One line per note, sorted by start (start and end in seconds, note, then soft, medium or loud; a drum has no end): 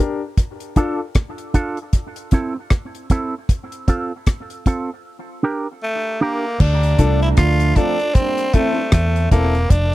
0.00 0.19 D4 medium
0.00 0.19 G4 medium
0.00 0.20 A#4 medium
0.37 kick loud
0.37 closed hi-hat medium
0.60 closed hi-hat medium
0.76 0.97 D4 medium
0.76 1.00 D4 medium
0.76 1.00 F4 medium
0.76 0.97 F4 medium
0.76 0.98 A4 medium
0.76 1.00 A4 medium
0.76 kick medium
0.76 closed hi-hat medium
1.15 kick loud
1.15 cross-stick loud
1.15 closed hi-hat medium
1.38 closed hi-hat soft
1.54 1.77 D4 medium
1.54 1.78 F4 medium
1.54 1.78 A4 loud
1.54 kick medium
1.54 closed hi-hat medium
1.77 closed hi-hat soft
1.93 kick medium
1.93 closed hi-hat medium
2.16 closed hi-hat medium
2.31 2.55 C4 medium
2.31 2.56 E4 medium
2.31 2.55 A4 medium
2.31 kick medium
2.31 closed hi-hat medium
2.56 muted clean electric guitar stroke soft
2.70 kick loud
2.70 cross-stick loud
2.70 closed hi-hat medium
2.95 closed hi-hat soft
3.10 3.34 C4 medium
3.10 3.34 E4 medium
3.10 3.34 A4 medium
3.10 kick medium
3.10 closed hi-hat medium
3.49 kick medium
3.49 closed hi-hat medium
3.72 closed hi-hat medium
3.88 4.11 C4 medium
3.88 4.12 F4 medium
3.88 4.12 A4 medium
3.88 kick medium
3.88 closed hi-hat medium
4.26 kick loud
4.26 cross-stick loud
4.26 closed hi-hat medium
4.50 closed hi-hat soft
4.66 4.89 C4 medium
4.66 4.89 F4 medium
4.66 4.90 A4 medium
4.66 kick medium
4.66 closed hi-hat medium
5.43 5.66 D4 medium
5.43 5.67 G4 medium
5.43 5.67 A#4 medium
5.83 6.23 A3 medium
6.21 6.62 A#3 medium
6.21 6.44 D4 medium
6.21 6.45 G4 medium
6.21 6.45 A#4 medium
6.60 6.94 D2 loud
6.60 7.21 D4 loud
6.60 kick loud
6.60 crash medium
6.83 closed hi-hat medium
6.98 7.33 C2 loud
6.98 7.73 F3 medium
6.98 7.73 A3 medium
6.98 7.19 D4 medium
6.98 7.73 D4 loud
6.98 7.19 F4 medium
6.98 7.20 A4 loud
6.98 kick medium
6.98 closed hi-hat medium
7.22 7.29 E4 medium
7.22 closed hi-hat soft
7.37 7.72 D2 medium
7.37 7.78 F4 medium
7.37 kick loud
7.37 cross-stick loud
7.37 closed hi-hat medium
7.60 closed hi-hat medium
7.76 7.96 F3 medium
7.76 7.96 A3 medium
7.76 7.96 C4 loud
7.76 7.97 D4 medium
7.76 8.16 D4 medium
7.76 7.97 F4 medium
7.76 7.97 A4 medium
7.76 kick medium
7.76 closed hi-hat medium
7.99 8.06 F4 soft
7.99 8.06 A4 soft
7.99 closed hi-hat soft
8.15 8.47 G3 medium
8.15 8.47 A#3 medium
8.15 8.56 C4 loud
8.15 8.47 D4 medium
8.15 kick loud
8.15 closed hi-hat medium
8.38 closed hi-hat medium
8.53 8.86 E3 medium
8.53 8.92 A3 medium
8.53 8.86 A3 medium
8.53 8.75 C4 medium
8.53 8.86 C4 medium
8.53 8.75 E4 medium
8.53 8.75 A4 medium
8.53 kick medium
8.53 closed hi-hat medium
8.92 9.27 E2 medium
8.92 9.29 A3 medium
8.92 kick loud
8.92 cross-stick loud
8.92 closed hi-hat medium
9.16 closed hi-hat soft
9.31 9.66 E1 medium
9.31 9.72 A#3 medium
9.31 9.52 C4 medium
9.31 9.52 E4 medium
9.31 9.53 A4 medium
9.31 kick medium
9.31 closed hi-hat medium
9.55 closed hi-hat soft
9.70 9.95 F1 medium
9.70 9.95 D4 medium
9.70 kick loud
9.70 closed hi-hat loud